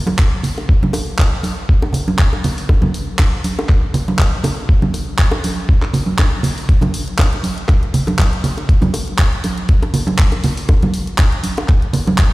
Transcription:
0.07 high bongo, high conga
0.19 kick, clap
0.43 open hi-hat, low conga
0.58 high bongo
0.69 kick
0.83 high conga, low conga
0.93 open hi-hat, high bongo
1.18 kick, clap
1.43 open hi-hat, high bongo, high conga
1.69 kick
1.82 high bongo
1.93 open hi-hat, low conga
2.08 high conga
2.19 kick, clap
2.33 high bongo
2.44 open hi-hat, low conga
2.58 open hi-hat
2.69 kick, high bongo
2.82 high conga, low conga
2.94 open hi-hat
3.19 kick, clap, high bongo
3.44 open hi-hat, high conga
3.59 high bongo
3.69 kick, clap
3.94 open hi-hat, low conga
4.08 high bongo, high conga
4.19 kick, clap
4.44 open hi-hat, high bongo, low conga
4.69 kick
4.82 high conga, low conga
4.94 open hi-hat, high bongo
5.18 kick, clap
5.31 high bongo
5.44 open hi-hat, high conga
5.69 kick
5.82 clap, high bongo
5.94 open hi-hat, low conga
6.06 high conga
6.18 kick, clap, high bongo
6.43 open hi-hat, low conga
6.58 open hi-hat
6.69 kick, closed hi-hat
6.81 closed hi-hat, high bongo, high conga, low conga
6.94 open hi-hat
7.08 closed hi-hat
7.18 kick, clap, closed hi-hat, high bongo
7.33 closed hi-hat
7.43 open hi-hat, high conga
7.58 closed hi-hat
7.68 kick, clap, closed hi-hat, high bongo
7.83 closed hi-hat
7.94 open hi-hat, low conga
8.07 closed hi-hat, high bongo, high conga
8.19 kick, clap, closed hi-hat
8.33 closed hi-hat
8.44 open hi-hat, low conga
8.57 closed hi-hat, high bongo
8.69 kick, closed hi-hat
8.82 closed hi-hat, high conga, low conga
8.94 open hi-hat, high bongo
9.08 closed hi-hat
9.18 kick, clap, closed hi-hat
9.33 closed hi-hat
9.44 open hi-hat, high bongo, high conga
9.58 closed hi-hat
9.69 kick, closed hi-hat
9.82 closed hi-hat, high bongo
9.94 open hi-hat, low conga
10.07 closed hi-hat, high conga
10.18 kick, clap, closed hi-hat
10.32 closed hi-hat, high bongo
10.44 open hi-hat, low conga
10.57 open hi-hat
10.69 kick, closed hi-hat, high bongo
10.82 closed hi-hat, high conga, low conga
10.94 open hi-hat
11.07 closed hi-hat
11.18 kick, clap, closed hi-hat, high bongo
11.32 closed hi-hat
11.43 open hi-hat, high conga
11.57 closed hi-hat, high bongo
11.68 kick, clap, closed hi-hat
11.82 closed hi-hat
11.93 open hi-hat, low conga
12.07 closed hi-hat, high bongo, high conga
12.18 kick, clap, closed hi-hat

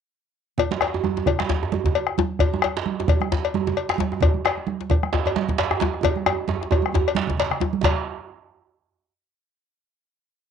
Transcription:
0.58 bombo rim, bombo low, cowbell, high conga, low conga, djembe bass
0.71 djembe slap, high conga
0.81 bombo rim, cowbell, djembe slap, high conga
0.94 high conga, djembe tone
1.04 bombo rim, djembe slap, high conga, djembe tone
1.17 djembe slap, djembe tone
1.26 bombo rim, bombo low, cowbell, djembe tone, low conga
1.39 bombo rim, djembe slap, high conga
1.49 bombo rim, djembe slap, djembe bass
1.63 djembe tone
1.72 high conga, djembe tone
1.84 bombo low, djembe slap, djembe tone, low conga
1.95 cowbell, high conga
2.07 bombo rim
2.18 djembe slap, high conga, djembe tone
2.39 bombo rim, bombo low, cowbell, high conga, djembe tone, low conga, djembe bass
2.53 high conga, djembe tone
2.62 bombo rim, cowbell, djembe slap, high conga
2.76 djembe slap, high conga
2.86 bombo rim, djembe slap, high conga
3.00 djembe slap, djembe tone
3.08 bombo rim, bombo low, cowbell, djembe tone, low conga
3.20 bombo rim, high conga
3.31 bombo rim, djembe slap, high conga, djembe bass
3.45 cowbell
3.54 high conga, djembe tone
3.67 djembe slap, djembe tone, low conga
3.77 cowbell
3.89 bombo rim, djembe slap
3.98 djembe slap, high conga, djembe tone
4.12 bombo rim, djembe tone
4.20 bombo rim, bombo low, cowbell, high conga, djembe tone, low conga, djembe bass
4.34 high conga
4.44 bombo rim, cowbell, djembe slap, high conga
4.57 high conga
4.67 bombo rim, djembe slap, high conga
4.81 djembe slap
4.90 bombo rim, bombo low, cowbell, djembe tone, low conga
5.03 bombo rim, high conga
5.13 bombo rim, djembe slap, high conga, djembe bass
5.26 cowbell, djembe tone
5.36 djembe slap, high conga
5.49 bombo low, djembe slap, low conga
5.58 cowbell, djembe slap
5.71 bombo rim, djembe tone
5.80 djembe slap, high conga
5.82 djembe slap, djembe tone
5.94 bombo rim
6.03 bombo low, cowbell, djembe tone, low conga, djembe bass
6.16 bombo rim, high conga
6.26 bombo rim, cowbell, djembe tone
6.48 high conga, djembe tone
6.62 bombo rim, djembe slap
6.71 bombo low, cowbell, djembe tone
6.72 djembe tone
6.82 bombo rim, high conga
6.93 bombo rim, djembe slap, high conga, djembe tone, djembe bass
7.08 bombo rim, cowbell
7.15 djembe slap, high conga
7.27 bombo low, djembe slap, high conga, low conga
7.37 cowbell, djembe slap, low conga
7.51 bombo rim, low conga
7.60 bombo rim, djembe slap, high conga, djembe tone
7.73 djembe slap, high conga
7.83 bombo low, cowbell, djembe slap, low conga, djembe bass

